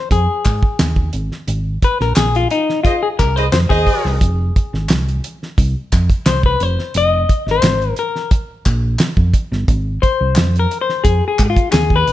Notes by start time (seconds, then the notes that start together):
Already playing: C5
0.11 F2 G#4, kick, closed hi-hat
0.45 G#2, kick, clap, closed hi-hat
0.63 kick
0.79 D#2, snare, clap, closed hi-hat
0.96 kick
1.13 G#1, closed hi-hat
1.32 snare
1.48 G#1, closed hi-hat
1.82 B4, kick, closed hi-hat
2.00 A#1 A#4, snare
2.16 A#1 G#4, snare, clap, closed hi-hat
2.35 F4, closed hi-hat
2.50 D#4, closed hi-hat
2.69 snare
2.83 F4 G#4 C5 D#5, kick, closed hi-hat
3.03 G#4
3.19 C2 A#4, kick, clap, closed hi-hat
3.36 G#4 B4 C5 D#5, closed hi-hat
3.52 F2 C5, snare, clap, closed hi-hat
3.69 D#2 G#4 C5 D#5, kick, snare
3.87 kick, open hi-hat
4.05 C2, snare
4.21 F1, kick, closed hi-hat
4.56 kick, closed hi-hat
4.73 G#1, snare
4.89 C2, snare, clap, closed hi-hat
5.08 closed hi-hat
5.24 closed hi-hat
5.43 snare
5.58 C2, kick, closed hi-hat
5.92 F2, kick, clap, closed hi-hat
6.10 kick, closed hi-hat
6.26 C2 C5, snare, clap, closed hi-hat
6.43 B4, kick
6.60 F1 C5, closed hi-hat
6.79 snare
6.94 F1 D#5, closed hi-hat
7.29 kick, closed hi-hat
7.46 G#1, snare
7.51 C5
7.63 G#1, snare, clap, closed hi-hat
7.82 closed hi-hat
7.96 A#4, closed hi-hat
8.16 snare
8.31 kick, closed hi-hat
8.65 A#1, kick, clap, closed hi-hat
8.99 snare, clap, closed hi-hat
9.17 F2, kick
9.34 kick, closed hi-hat
9.52 G1, snare
9.68 G#1, kick, closed hi-hat
10.02 C5, kick, closed hi-hat
10.21 C2
10.35 F2, snare, clap, closed hi-hat
10.56 A#4, closed hi-hat
10.71 closed hi-hat
10.81 C5
10.89 snare
11.04 F2 G#4, kick, closed hi-hat
11.28 G#4
11.39 G#2, kick, clap, closed hi-hat
11.46 G#4
11.50 F4
11.56 kick, closed hi-hat
11.72 D#2 G#4, snare, clap, closed hi-hat
11.90 kick
11.96 B4
12.07 G#1, closed hi-hat